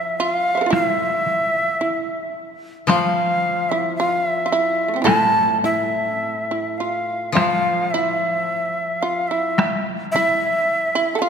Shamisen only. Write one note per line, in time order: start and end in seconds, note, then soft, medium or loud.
0.00 0.14 E4 medium
0.20 0.54 F4 medium
0.55 0.61 C5 soft
0.55 0.69 E5 soft
0.61 0.66 A4 soft
0.61 0.70 B4 soft
0.66 0.81 F4 soft
0.70 1.76 E4 medium
1.81 2.31 E4 medium
2.90 3.67 F4 medium
3.71 3.96 E4 medium
4.00 4.43 F4 medium
4.46 4.52 F4 medium
4.52 4.96 E4 medium
4.88 5.01 A3 soft
4.94 5.04 B3 soft
4.94 5.05 C4 soft
5.02 5.15 E4 soft
5.02 5.18 F4 medium
5.02 6.73 A4 medium
5.64 6.19 E4 medium
6.19 6.46 C4 medium
6.51 6.77 E4 soft
6.80 7.33 F4 medium
7.35 7.89 F4 medium
7.94 9.00 E4 medium
9.03 9.29 F4 medium
9.31 9.83 E4 medium
10.16 10.92 E4 medium
10.95 11.14 E4 medium
11.15 11.21 A4 medium
11.22 11.29 F4 medium